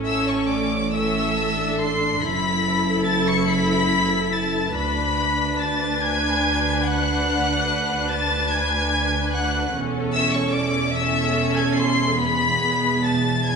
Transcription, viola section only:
0, 0, Header, 1, 2, 480
1, 0, Start_track
1, 0, Key_signature, 3, "major"
1, 0, Tempo, 879765
1, 744, Tempo, 845070
1, 2663, Time_signature, 12, 3, 24, 8
1, 3144, Tempo, 835655
1, 4584, Tempo, 818554
1, 6984, Tempo, 874636
1, 7735, End_track
2, 0, Start_track
2, 0, Title_t, "Viola section"
2, 0, Program_c, 0, 48
2, 0, Note_on_c, 0, 61, 85
2, 0, Note_on_c, 0, 69, 77
2, 485, Note_off_c, 0, 69, 0
2, 486, Note_off_c, 0, 61, 0
2, 510, Note_on_c, 0, 69, 92
2, 513, Note_on_c, 0, 61, 80
2, 859, Note_off_c, 0, 61, 0
2, 871, Note_on_c, 0, 62, 70
2, 1212, Note_off_c, 0, 69, 0
2, 1223, Note_off_c, 0, 62, 0
2, 1228, Note_on_c, 0, 64, 79
2, 1230, Note_on_c, 0, 69, 78
2, 2641, Note_off_c, 0, 69, 0
2, 2662, Note_on_c, 0, 62, 83
2, 2663, Note_off_c, 0, 64, 0
2, 2667, Note_on_c, 0, 71, 70
2, 5516, Note_off_c, 0, 62, 0
2, 5542, Note_off_c, 0, 71, 0
2, 5545, Note_on_c, 0, 69, 87
2, 5546, Note_on_c, 0, 61, 88
2, 6239, Note_off_c, 0, 61, 0
2, 6247, Note_off_c, 0, 69, 0
2, 6254, Note_on_c, 0, 69, 95
2, 6256, Note_on_c, 0, 61, 94
2, 6969, Note_off_c, 0, 61, 0
2, 6969, Note_off_c, 0, 69, 0
2, 6975, Note_on_c, 0, 59, 74
2, 6980, Note_on_c, 0, 68, 77
2, 7682, Note_off_c, 0, 59, 0
2, 7699, Note_off_c, 0, 68, 0
2, 7701, Note_on_c, 0, 59, 66
2, 7705, Note_on_c, 0, 68, 64
2, 7735, Note_off_c, 0, 59, 0
2, 7735, Note_off_c, 0, 68, 0
2, 7735, End_track
0, 0, End_of_file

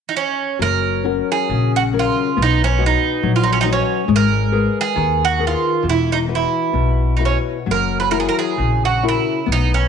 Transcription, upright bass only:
0, 0, Header, 1, 2, 480
1, 0, Start_track
1, 0, Key_signature, 6, "major"
1, 0, Tempo, 907716
1, 311, Time_signature, 2, 2, 24, 8
1, 792, Tempo, 869565
1, 3192, Tempo, 904977
1, 5333, End_track
2, 0, Start_track
2, 0, Title_t, "Upright bass"
2, 0, Program_c, 0, 32
2, 317, Note_on_c, 0, 30, 68
2, 627, Note_off_c, 0, 30, 0
2, 790, Note_on_c, 0, 34, 69
2, 1105, Note_off_c, 0, 34, 0
2, 1277, Note_on_c, 0, 35, 81
2, 1586, Note_off_c, 0, 35, 0
2, 1750, Note_on_c, 0, 34, 76
2, 2060, Note_off_c, 0, 34, 0
2, 2221, Note_on_c, 0, 32, 84
2, 2535, Note_off_c, 0, 32, 0
2, 2706, Note_on_c, 0, 39, 80
2, 3021, Note_off_c, 0, 39, 0
2, 3189, Note_on_c, 0, 28, 72
2, 3500, Note_off_c, 0, 28, 0
2, 3665, Note_on_c, 0, 35, 66
2, 3986, Note_off_c, 0, 35, 0
2, 4159, Note_on_c, 0, 30, 68
2, 4473, Note_off_c, 0, 30, 0
2, 4645, Note_on_c, 0, 34, 71
2, 4953, Note_off_c, 0, 34, 0
2, 5119, Note_on_c, 0, 35, 72
2, 5333, Note_off_c, 0, 35, 0
2, 5333, End_track
0, 0, End_of_file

